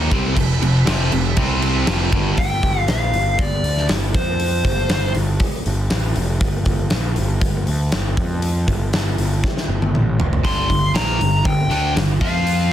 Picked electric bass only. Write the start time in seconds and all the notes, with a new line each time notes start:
0.11 C2
0.37 F1
0.61 F1
0.87 F1
1.12 F1
1.37 C2
1.88 F1
2.13 G1
2.38 G1
2.63 G1
2.88 A#1
3.14 G1
3.39 G1
3.63 D2
3.89 G1
4.14 F2
4.65 G1
4.91 G1
5.16 G1
5.66 G1
5.90 A1
6.16 F1
6.41 G1
6.66 G1
6.92 A#1
7.17 G1
7.42 G1
7.68 D2
7.93 G1
8.17 F2
8.68 G1
8.93 G1
9.18 G1
9.68 G1
9.94 A1
10.19 F1
10.45 G1
10.70 G1
10.95 A#1
11.19 G1
11.46 G1
11.70 D2
11.96 G1
12.21 F2